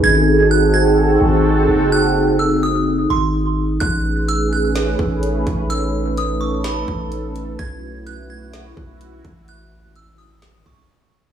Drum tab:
HH |--------|--------|x-x-x-xx|x-x-x-xx|
SD |--------|--------|----o---|----o---|
BD |--------|--------|o----o-o|-----o--|

HH |x-x-x-xx|x-xox---|
SD |----o---|----o---|
BD |o----o-o|-----o--|